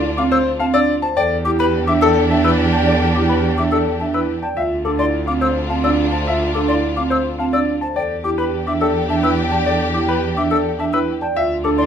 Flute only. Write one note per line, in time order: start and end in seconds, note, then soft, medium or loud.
0.17 0.23 D6 medium
0.32 0.38 E6 medium
0.60 0.66 A5 medium
0.74 0.80 E6 medium
1.02 1.08 A5 medium
1.16 1.22 G5 loud
1.45 1.51 D6 medium
1.59 1.65 B5 loud
1.87 1.93 D6 medium
2.02 2.08 E6 loud
2.30 2.36 A5 medium
2.44 2.50 E6 loud
2.73 2.79 A5 medium
2.87 2.93 G5 medium
3.15 3.21 D6 medium
3.29 3.35 B5 medium
3.57 3.63 D6 medium
3.72 3.78 E6 medium
4.00 4.06 A5 medium
4.14 4.20 E6 medium
4.43 4.49 A5 medium
4.56 4.62 F5 medium
4.85 4.91 D6 medium
4.99 5.05 C6 medium
5.27 5.33 D6 medium
5.42 5.48 E6 medium
5.70 5.76 A5 medium
5.84 5.90 E6 medium
6.12 6.18 A5 medium
6.26 6.32 F5 medium
6.54 6.60 D6 medium
6.68 6.74 C6 medium
6.97 7.03 D6 medium
7.11 7.17 E6 medium
7.40 7.46 A5 medium
7.53 7.59 E6 medium
7.82 7.88 A5 medium
7.96 8.02 G5 medium
8.24 8.30 D6 medium
8.39 8.45 B5 medium
8.67 8.73 D6 medium
8.81 8.87 E6 medium
9.10 9.16 A5 medium
9.24 9.30 E6 medium
9.52 9.58 A5 medium
9.66 9.72 G5 medium
9.94 10.00 D6 medium
10.08 10.14 B5 medium
10.37 10.43 D6 medium
10.51 10.57 E6 medium
10.79 10.85 A5 medium
10.93 10.99 E6 medium
11.21 11.27 A5 medium
11.36 11.42 F5 medium
11.64 11.70 D6 medium
11.78 11.84 C6 medium